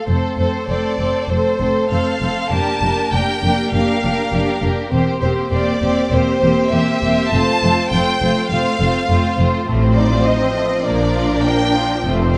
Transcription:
0.07 double bass section F1, cello section F2, viola section A3 C4, violin section A4 C5
0.38 double bass section F1, cello section F2, viola section A3 C4, violin section A4 C5
0.68 double bass section F1, cello section F2, viola section A3 C4, violin section A4 C5 D5
0.99 double bass section F1, cello section F2, viola section A3 C4, violin section A4 C5
1.28 double bass section F1, cello section F2, viola section A3 C4, violin section A4 C5
1.60 double bass section F1, cello section F2, viola section A3 C4, violin section A4 C5
1.91 double bass section F1, cello section F2, viola section A3 C4, violin section A4 C5 F5
2.21 double bass section F1, cello section F2, viola section A3 C4, violin section A4 C5
2.51 double bass section F1, cello section F2, viola section A#3 D4, violin section G4 A#4 A5
2.82 double bass section F1, cello section F2, viola section A#3 D4, violin section G4 A#4
3.13 double bass section F1, cello section F2, viola section A#3 D4, violin section G4 A#4 G5
3.43 double bass section F1, cello section F2, viola section A#3 D4, violin section G4 A#4
3.73 double bass section F1, cello section F2, viola section A#3 D4, violin section G4 A#4 F5
4.03 double bass section F1, cello section F2, viola section A#3 D4, violin section G4 A#4
4.32 double bass section F1, cello section F2, viola section A#3 D4, violin section G4 A#4
4.62 double bass section F1, cello section F2, viola section A#3 D4, violin section G4 A#4
4.92 double bass section E1, cello section E2, viola section A#3 C4, violin section G4 C5
5.22 double bass section E1, cello section E2, viola section A#3 C4, violin section G4 C5
5.51 double bass section E1, cello section E2, viola section A#3 C4, violin section G4 C5 D5
5.81 double bass section E1, cello section E2, viola section A#3 C4, violin section G4 C5
6.11 double bass section E1, cello section E2, viola section A#3 C4, violin section G4 C5
6.42 double bass section E1, cello section E2, viola section A#3 C4, violin section G4 C5
6.71 double bass section E1, cello section E2, viola section A#3 C4, violin section G4 C5 E5
7.02 double bass section E1, cello section E2, viola section A#3 C4, violin section G4 C5
7.32 double bass section F1, cello section F2, viola section A3 C4, violin section F4 C5 A5
7.63 double bass section F1, cello section F2, viola section A3 C4, violin section F4 C5
7.91 double bass section F1, cello section F2, viola section A3 C4, violin section F4 C5 G5
8.21 double bass section F1, cello section F2, viola section A3 C4, violin section F4 C5
8.49 double bass section F1, cello section F2, viola section A3 C4, violin section F4 C5 F5
8.80 double bass section F1, cello section F2, viola section A3 C4, violin section F4 C5
9.09 double bass section F1, cello section F2, viola section A3 C4, violin section F4 C5
9.38 double bass section F1, cello section F2, viola section A3 C4, violin section F4 C5
9.68 double bass section A1, cello section A2, viola section F3 C4, violin section A3 C5
9.83 violin section C4
9.97 violin section D#4 D5
10.12 violin section F4
10.27 violin section D#4 D#5
10.42 violin section C4
10.56 violin section A3
10.70 violin section C4
10.85 double bass section A#1, cello section A#2, violin section A#3 A#4 D5, viola section D4
11.01 violin section D4
11.17 violin section F4
11.32 violin section D4
11.47 violin section A#3 G5
11.64 violin section D4
11.78 violin section F4
11.93 violin section D4
12.06 double bass section F1, cello section F2, violin section A3 C5, viola section C4
12.22 violin section C4

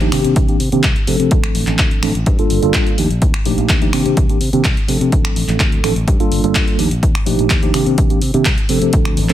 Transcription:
0.00 tine electric piano F3 A3 D4 D#4 G4, closed hi-hat
0.12 fingered electric bass C3, tine electric piano D#3 A#3 C4 D4 G4, finger snap, open hi-hat
0.24 fingered electric bass C3, closed hi-hat
0.36 fingered electric bass C2, kick, closed hi-hat
0.48 tine electric piano D#3 A#3 C4 D4 G4, closed hi-hat
0.60 fingered electric bass C3, open hi-hat
0.72 fingered electric bass C3, tine electric piano D#3 A#3 C4 D4 G4, closed hi-hat
0.83 fingered electric bass C2, kick, clap, closed hi-hat
0.96 closed hi-hat
1.07 fingered electric bass C3, tine electric piano F3 A3 C4 D4 A4, open hi-hat
1.20 fingered electric bass C3, closed hi-hat
1.31 kick, closed hi-hat
1.44 finger snap, closed hi-hat
1.55 fingered electric bass A1, open hi-hat
1.67 fingered electric bass A1, clap, closed hi-hat
1.79 fingered electric bass D2, kick, clap, closed hi-hat
1.91 closed hi-hat
2.02 fingered electric bass A1, tine electric piano F3 A3 C4 D4 A4, finger snap, open hi-hat
2.15 fingered electric bass A1, closed hi-hat
2.26 fingered electric bass G2, kick, closed hi-hat
2.38 tine electric piano G3 A#3 D4 F4 A4, closed hi-hat
2.50 fingered electric bass G1, open hi-hat
2.62 fingered electric bass G1, tine electric piano G3 A#3 D4 F4 A4, closed hi-hat
2.74 fingered electric bass G2, kick, clap, closed hi-hat
2.87 closed hi-hat
2.97 fingered electric bass D#2, tine electric piano F3 A3 D4 D#4 G4, open hi-hat
3.10 fingered electric bass A#1, closed hi-hat
3.22 fingered electric bass D#2, kick, closed hi-hat
3.34 finger snap, closed hi-hat
3.45 fingered electric bass A#1, tine electric piano F3 A3 D4 D#4 G4, open hi-hat
3.58 fingered electric bass A#1, closed hi-hat
3.69 fingered electric bass D#2, kick, clap, closed hi-hat
3.82 tine electric piano F3 A3 D4 D#4 G4, closed hi-hat
3.93 fingered electric bass C3, tine electric piano D#3 A#3 C4 D4 G4, finger snap, open hi-hat
4.06 fingered electric bass C3, closed hi-hat
4.17 fingered electric bass C2, kick, closed hi-hat
4.29 tine electric piano D#3 A#3 C4 D4 G4, closed hi-hat
4.41 fingered electric bass C3, open hi-hat
4.53 fingered electric bass C3, tine electric piano D#3 A#3 C4 D4 G4, closed hi-hat
4.64 fingered electric bass C2, kick, clap, closed hi-hat
4.77 closed hi-hat
4.88 fingered electric bass C3, tine electric piano F3 A3 C4 D4 A4, open hi-hat
5.01 fingered electric bass C3, closed hi-hat
5.12 fingered electric bass D2, kick, closed hi-hat
5.25 finger snap, closed hi-hat
5.36 fingered electric bass A1, open hi-hat
5.48 fingered electric bass A1, clap, closed hi-hat
5.60 fingered electric bass D2, kick, clap, closed hi-hat
5.72 closed hi-hat
5.83 fingered electric bass A1, tine electric piano F3 A3 C4 D4 A4, finger snap, open hi-hat
5.96 fingered electric bass A1, closed hi-hat
6.08 fingered electric bass G2, kick, closed hi-hat
6.20 tine electric piano G3 A#3 D4 F4 A4, closed hi-hat
6.31 fingered electric bass G1, open hi-hat
6.43 fingered electric bass G1, tine electric piano G3 A#3 D4 F4 A4, closed hi-hat
6.55 fingered electric bass G2, kick, clap, closed hi-hat
6.68 closed hi-hat
6.78 fingered electric bass D#2, tine electric piano F3 A3 D4 D#4 G4, open hi-hat
6.91 fingered electric bass A#1, closed hi-hat
7.03 fingered electric bass D#2, kick, closed hi-hat
7.15 finger snap, closed hi-hat
7.26 fingered electric bass A#1, tine electric piano F3 A3 D4 D#4 G4, open hi-hat
7.39 fingered electric bass A#1, closed hi-hat
7.50 kick, clap, closed hi-hat
7.62 tine electric piano F3 A3 D4 D#4 G4, closed hi-hat
7.74 fingered electric bass C3, tine electric piano D#3 A#3 C4 D4 G4, finger snap, open hi-hat
7.86 fingered electric bass C3, closed hi-hat
7.98 fingered electric bass C2, kick, closed hi-hat
8.10 tine electric piano D#3 A#3 C4 D4 G4, closed hi-hat
8.22 fingered electric bass C3, open hi-hat
8.34 fingered electric bass C3, tine electric piano D#3 A#3 C4 D4 G4, closed hi-hat
8.45 fingered electric bass C2, finger snap, kick, clap, closed hi-hat
8.58 closed hi-hat
8.69 fingered electric bass C3, tine electric piano F3 A3 C4 D4 A4, open hi-hat
8.82 fingered electric bass C3, closed hi-hat
8.93 fingered electric bass D2, kick, closed hi-hat
9.05 finger snap, closed hi-hat
9.17 fingered electric bass A1, open hi-hat
9.29 fingered electric bass A1, tine electric piano F3 A3 C4 D4 A4, clap, closed hi-hat

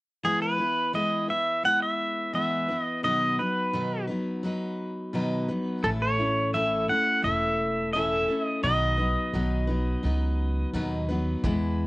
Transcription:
0.23 steel-string acoustic guitar E3 G#3 B3 E4 B4, pedal steel guitar G#4
0.42 pedal steel guitar B4
0.58 steel-string acoustic guitar B3 E4 B4
0.93 steel-string acoustic guitar E3 G#3 B3 E4 B4, pedal steel guitar D#5
1.28 steel-string acoustic guitar B3 E4 B4, pedal steel guitar E5
1.63 steel-string acoustic guitar G#3 B3 E4 B4, pedal steel guitar F#5
1.82 pedal steel guitar E5
2.33 steel-string acoustic guitar E3 G#3 B3 E4 B4, pedal steel guitar E5
2.68 steel-string acoustic guitar B3 E4 B4
2.81 pedal steel guitar D#5
3.03 steel-string acoustic guitar B2 D#3 F#3 B3 D#4 B4, pedal steel guitar D#5
3.38 steel-string acoustic guitar F#3 B3 D#4 B4, pedal steel guitar B4
3.73 steel-string acoustic guitar B2 D#3 F#3 B3 D#4 B4
4.08 steel-string acoustic guitar F#3 B3 D#4 B4
4.43 steel-string acoustic guitar F#3 B3 D#4 B4
5.13 steel-string acoustic guitar B2 D#3 F#3 B3 D#4 B4
5.49 steel-string acoustic guitar F#3 B3 D#4 B4
5.84 upright bass A1, steel-string acoustic guitar A2 E3 A3 C#4 E4 A4, pedal steel guitar A4
6.02 pedal steel guitar C#5
6.18 steel-string acoustic guitar A3 C#4 E4 A4
6.54 steel-string acoustic guitar A2 E3 A3 C#4 E4 A4, pedal steel guitar E5
6.88 steel-string acoustic guitar A3 C#4 E4 A4, pedal steel guitar F#5
7.22 upright bass E1, steel-string acoustic guitar A3 C#4 E4 A4, pedal steel guitar E5
7.93 steel-string acoustic guitar A2 E3 A3 C#4 E4 A4, pedal steel guitar E5
8.28 steel-string acoustic guitar A3 C#4 E4 A4
8.44 pedal steel guitar D#5
8.63 upright bass B1, steel-string acoustic guitar B2 D#3 F#3 B3 D#4 B4, pedal steel guitar D#5
8.97 steel-string acoustic guitar F#3 B3 D#4 B4
9.33 upright bass B1, steel-string acoustic guitar B2 D#3 F#3 B3 D#4 B4
9.67 steel-string acoustic guitar F#3 B3 D#4 B4
10.03 upright bass C#2, steel-string acoustic guitar F#3 B3 D#4 B4
10.73 upright bass D#2, steel-string acoustic guitar B2 D#3 F#3 B3 D#4 B4
11.09 steel-string acoustic guitar F#3 B3 D#4 B4
11.44 upright bass E2, steel-string acoustic guitar E3 G#3 B3 E4 B4, kick, closed hi-hat

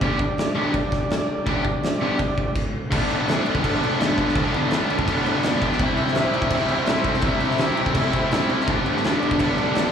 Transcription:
0.00 overdriven electric guitar G2 D3 G3 B3, transistor combo organ D4 G4 D5, kick, crash
0.04 overdriven electric guitar D4 G4
0.19 kick
0.38 snare, crash
0.55 overdriven electric guitar G2 D3 G3 B3 D4 G4
0.74 kick, crash
0.92 kick, snare
1.10 snare, crash
1.46 overdriven electric guitar G2 D3 G3 B3 D4 G4, kick, crash
1.65 kick
1.83 snare, crash
2.01 overdriven electric guitar G2 D3 G3 B3 D4 G4
2.19 kick, crash
2.38 kick
2.56 kick, crash
2.91 overdriven electric guitar G2 D3 G3 B3 D4, kick, crash
3.10 crash
3.27 overdriven electric guitar D3 G3 B3 D4, snare, crash
3.46 crash
3.55 kick
3.62 overdriven electric guitar D3 G3 B3 D4, kick, crash
3.81 overdriven electric guitar G3 B3 D4, crash
3.98 overdriven electric guitar G2 D3 G3 B3 D4, snare, crash
4.17 overdriven electric guitar G3 B3 D4, kick, crash
4.28 snare
4.35 overdriven electric guitar G2 D3 G3 B3, kick, crash
4.40 overdriven electric guitar D4
4.54 crash
4.71 overdriven electric guitar D3 G3 B3, snare, crash
4.76 overdriven electric guitar D4
4.90 crash
4.99 kick
5.08 overdriven electric guitar D3 G3 B3 D4, kick, crash
5.26 overdriven electric guitar B3 D4, crash
5.31 overdriven electric guitar G3
5.43 overdriven electric guitar G2 D3 G3 B3, snare, crash
5.48 overdriven electric guitar D4
5.62 overdriven electric guitar B3 D4, kick, crash
5.67 overdriven electric guitar G3
5.72 snare
5.79 overdriven electric guitar C3 G3, kick, crash
5.83 overdriven electric guitar C4 E4
5.97 crash
6.08 snare
6.15 overdriven electric guitar C3 G3, snare, crash
6.19 overdriven electric guitar C4 E4
6.34 crash
6.42 kick
6.51 overdriven electric guitar C3 G3, kick, crash
6.55 overdriven electric guitar C4 E4
6.68 overdriven electric guitar E4, crash
6.73 overdriven electric guitar G3 C4
6.86 overdriven electric guitar C3 G3, snare, crash
6.91 overdriven electric guitar C4 E4
7.04 overdriven electric guitar E4, kick, crash
7.10 overdriven electric guitar G3 C4
7.14 snare
7.22 overdriven electric guitar C3, kick, crash
7.26 overdriven electric guitar G3 C4 E4
7.40 crash
7.51 snare
7.58 overdriven electric guitar C3 G3, snare, crash
7.64 overdriven electric guitar C4 E4
7.77 crash
7.86 kick
7.94 overdriven electric guitar C3 G3, kick, crash
7.99 overdriven electric guitar C4 E4
8.13 overdriven electric guitar C4 E4, kick, crash
8.18 overdriven electric guitar G3
8.32 overdriven electric guitar C3 G3, snare, crash
8.36 overdriven electric guitar C4 E4
8.49 overdriven electric guitar C4 E4, crash
8.55 overdriven electric guitar G3
8.61 snare
8.67 overdriven electric guitar G2 D3 G3 B3 D4, transistor combo organ D4 G4, kick, crash
8.72 transistor combo organ B4
8.86 crash
8.97 snare
9.03 overdriven electric guitar D3 G3 B3 D4, snare, crash
9.22 crash
9.31 kick
9.39 overdriven electric guitar D3 G3, kick, crash
9.44 overdriven electric guitar B3 D4
9.58 overdriven electric guitar B3 D4, crash
9.63 overdriven electric guitar G3
9.75 overdriven electric guitar G2 D3 G3, snare, crash
9.79 overdriven electric guitar B3 D4

